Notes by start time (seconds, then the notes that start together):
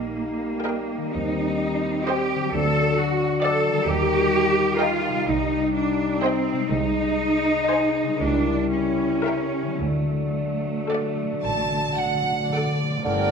Already playing: A#1 D#3 G3 A#3 D#4 G4
0.64 A#4 D#5 G5
0.97 D#3
1.02 G3
1.06 C4
1.11 D#2 D#4 G4
1.16 G3 C4
2.07 G4 C5 D#5 G5
2.35 D3
2.40 F#3
2.44 D4
2.49 D2 A4 D5
2.54 F#3 D4
2.97 F#4
3.42 A4 D5 F#5
3.69 D#3
3.74 G3
3.78 G4
3.83 A#4
3.87 D#2 G3 D#4 G4
4.79 F4 A#4 D#5 G5
5.09 C3
5.14 G3
5.18 G4
5.23 C5
5.27 C2 D#4
5.74 D4
6.22 C4 C5 D#5 G5
6.53 C3
6.57 G#3
6.62 D#4
6.66 C5
6.70 C2 G#3 D#4
7.70 C5 D#5 G#5
8.03 C#3
8.07 G3
8.12 E4
8.16 D4 A#4
8.21 C#2 G3 E4
8.71 C#4
9.24 A#4 E5 G5
9.62 D3
9.66 F#3
9.71 D4
9.75 A3 A4
9.79 D2 D3 F#3 D4
10.23 D3
10.58 D3
10.66 D3
10.75 D3
10.83 D3
10.90 D3 A4 D5 F#5
11.16 D3
11.24 D3
11.33 D3
11.40 A1 D3 A5
11.49 D3
11.65 D3
11.72 D3
11.88 D3
11.97 D3 F#5
12.05 D3
12.15 D3
12.23 D3
12.32 D3
12.40 D3
12.50 D3 A4 D5 F#5
12.58 D3
12.66 D3
12.74 D3
12.83 D3
12.90 D3
12.98 D3
13.05 G1 G2 D3 A#4 D5 G5